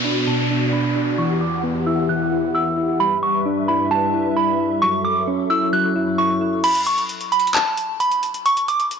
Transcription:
0.00 0.26 B2 medium
0.00 1.16 B2 medium
0.00 0.96 B3 medium
0.00 1.17 B3 medium
0.00 1.16 F#4 medium
0.00 1.17 D5 medium
0.00 downlifter medium
0.05 0.49 D4 medium
0.05 0.22 B5 medium
0.27 1.18 B2 medium
0.27 0.70 A5 medium
0.50 0.72 D4 medium
0.73 0.94 D4 medium
0.73 1.16 B5 medium
0.95 1.18 D4 medium
1.18 2.98 E2 medium
1.18 2.98 E3 medium
1.18 2.08 E3 medium
1.18 2.98 G4 medium
1.18 2.98 F#5 medium
1.18 1.36 C#6 medium
1.41 1.58 D6 medium
1.64 2.77 B3 medium
1.87 2.31 E4 medium
1.87 2.04 E6 medium
2.09 3.00 E3 medium
2.09 2.52 F#6 medium
2.32 2.53 E4 medium
2.55 2.76 E4 medium
2.55 2.97 E6 medium
2.77 3.00 E4 medium
3.00 4.80 G2 medium
3.00 4.80 G3 medium
3.00 3.90 G3 medium
3.00 4.80 B4 medium
3.00 6.60 E5 medium
3.00 3.17 B5 loud
3.23 3.40 C#6 medium
3.46 4.59 D4 medium
3.68 4.13 E4 medium
3.68 3.86 B5 medium
3.91 4.82 G3 medium
3.91 4.34 A5 medium
4.14 4.35 E4 medium
4.36 4.59 E4 medium
4.36 4.79 B5 medium
4.60 4.82 E4 medium
4.82 6.62 F#2 medium
4.82 6.62 F#3 medium
4.82 5.72 F#3 medium
4.82 6.62 A4 medium
4.82 4.99 C#6 loud
5.05 5.22 D6 medium
5.27 6.41 C#4 medium
5.50 5.94 E4 medium
5.50 5.68 E6 medium
5.73 6.64 F#3 medium
5.73 6.16 F#6 medium
5.96 6.17 E4 medium
6.18 6.40 E4 medium
6.18 6.61 C#6 medium
6.41 6.64 E4 medium
6.64 6.81 B5 loud
6.64 closed hi-hat medium
6.64 crash loud
6.75 closed hi-hat medium
6.87 7.04 C#6 medium
6.87 closed hi-hat medium
6.98 closed hi-hat medium
7.09 closed hi-hat medium
7.21 closed hi-hat medium
7.32 7.49 B5 medium
7.32 closed hi-hat medium
7.40 closed hi-hat medium
7.47 closed hi-hat medium
7.55 7.97 A5 loud
7.55 clap loud
7.55 closed hi-hat medium
7.77 closed hi-hat medium
8.00 8.43 B5 medium
8.00 closed hi-hat medium
8.12 closed hi-hat medium
8.23 closed hi-hat medium
8.34 closed hi-hat medium
8.46 8.63 C#6 medium
8.46 closed hi-hat medium
8.57 closed hi-hat medium
8.68 8.86 D6 medium
8.68 closed hi-hat medium
8.80 closed hi-hat medium
8.91 closed hi-hat medium

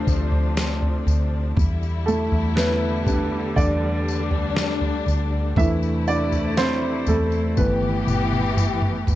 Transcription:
0.00 1.53 C3 medium
0.00 1.54 F3 medium
0.00 1.04 A3 medium
0.00 1.59 C4 medium
0.00 1.54 D4 medium
0.00 1.02 A4 medium
0.00 1.59 C5 medium
0.07 1.03 D2 medium
0.07 kick medium
0.07 tambourine soft
0.32 floor tom medium
0.57 snare loud
0.57 tambourine medium
0.82 floor tom medium
1.07 1.53 D2 medium
1.07 floor tom medium
1.07 tambourine soft
1.57 2.28 E2 medium
1.57 5.53 D3 medium
1.57 5.54 G3 medium
1.57 3.55 E4 medium
1.57 kick loud
1.57 floor tom loud
1.57 tambourine soft
1.83 tambourine soft
2.06 2.54 A3 medium
2.06 2.58 A4 medium
2.06 tambourine soft
2.32 3.53 E2 loud
2.32 floor tom medium
2.56 3.06 B3 medium
2.56 3.60 B4 medium
2.56 snare loud
2.56 tambourine medium
3.06 3.73 G3 medium
3.06 3.74 B3 soft
3.06 3.56 D4 medium
3.06 kick medium
3.06 floor tom medium
3.06 tambourine medium
3.56 5.03 E2 loud
3.56 5.53 D4 medium
3.56 5.56 D4 medium
3.56 5.63 D5 medium
3.56 kick medium
3.56 floor tom medium
3.56 tambourine soft
4.08 tambourine soft
4.31 floor tom medium
4.57 snare medium
4.57 tambourine medium
4.81 floor tom medium
5.06 5.54 D2 medium
5.06 floor tom medium
5.06 tambourine soft
5.56 7.03 E2 loud
5.56 7.55 C3 medium
5.56 7.03 E3 medium
5.56 7.03 A3 soft
5.56 7.56 A3 medium
5.56 6.07 D4 medium
5.56 7.56 E4 medium
5.56 5.69 E4 medium
5.56 5.69 E5 medium
5.56 kick loud
5.56 floor tom loud
5.56 tambourine soft
5.83 tambourine soft
6.08 6.55 D4 medium
6.08 6.59 D5 medium
6.08 tambourine soft
6.32 floor tom soft
6.32 tambourine soft
6.57 7.05 C4 medium
6.57 7.09 C5 medium
6.57 snare medium
6.57 tambourine medium
7.07 7.54 E2 medium
7.07 7.20 A3 medium
7.07 7.19 A4 medium
7.07 floor tom medium
7.07 tambourine medium
7.32 tambourine soft
7.57 8.04 G1 medium
7.57 8.24 E3 medium
7.57 9.15 E3 medium
7.57 8.24 A3 soft
7.57 9.15 B3 medium
7.57 8.25 B3 medium
7.57 9.15 G4 medium
7.57 8.53 B4 medium
7.57 kick medium
7.57 high tom medium
7.57 tambourine soft
7.82 high tom medium
8.07 9.04 G1 medium
8.07 mid tom medium
8.07 tambourine medium
8.33 mid tom medium
8.57 mid tom medium
8.57 tambourine medium
8.82 mid tom medium
9.07 9.15 G1 medium
9.07 floor tom loud
9.07 tambourine soft

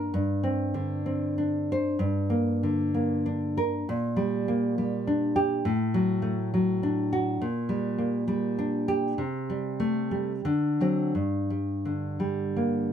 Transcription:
0.00 0.14 A#3 medium
0.00 0.12 D4 medium
0.00 0.13 A#4 medium
0.14 1.97 G2 medium
0.43 1.05 C4 medium
0.74 1.69 D3 medium
1.06 2.00 C4 medium
1.38 2.01 D4 medium
1.72 2.02 C5 medium
1.99 3.82 G2 medium
2.30 2.93 A#3 medium
2.63 3.57 D3 medium
2.94 3.87 A#3 medium
3.26 3.87 D4 medium
3.57 3.87 A#4 medium
3.89 5.62 A#2 medium
4.17 4.77 G3 medium
4.48 5.36 A#3 medium
4.78 5.66 G3 medium
5.07 5.66 D4 medium
5.36 5.65 G4 medium
5.65 7.38 A2 medium
5.94 6.52 F#3 medium
6.22 7.12 A3 medium
6.54 7.42 F#3 medium
6.83 7.42 D4 medium
7.13 7.42 F#4 medium
7.41 9.17 A#2 medium
7.69 8.26 G3 medium
7.98 8.90 A#3 medium
8.28 9.19 G3 medium
8.59 9.20 D4 medium
8.88 9.20 G4 medium
9.18 10.41 C3 medium
9.50 10.10 G3 medium
9.80 10.32 A3 medium
10.11 10.45 G3 medium
10.45 11.12 D3 medium
10.81 11.12 F#3 soft
10.81 11.12 C4 medium
11.15 12.93 G2 medium
11.50 12.18 G3 medium
11.85 12.91 D3 soft
12.20 12.93 G3 soft
12.56 12.93 A#3 soft

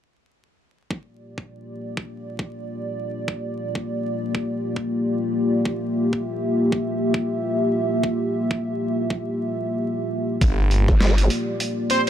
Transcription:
0.90 10.37 A#3 medium
0.90 10.37 F4 medium
0.90 10.37 G4 medium
0.90 5.62 D5 medium
0.90 kick loud
1.38 kick medium
1.97 kick medium
2.39 kick loud
3.28 kick loud
3.75 kick loud
4.35 kick loud
4.76 kick medium
5.65 10.37 E5 medium
5.65 kick loud
6.13 kick medium
6.72 kick loud
7.14 kick loud
8.03 kick loud
8.51 kick loud
9.10 kick loud
10.41 10.86 G1 medium
10.41 12.10 A#3 medium
10.41 12.10 F4 medium
10.41 12.10 G4 medium
10.41 12.10 D5 medium
10.41 kick loud
10.41 closed hi-hat medium
10.71 closed hi-hat medium
10.88 11.29 G1 loud
10.88 kick loud
10.88 snare medium
11.01 snare loud
11.18 closed hi-hat medium
11.30 closed hi-hat medium
11.60 closed hi-hat medium
11.90 12.01 C5 medium
11.90 closed hi-hat medium

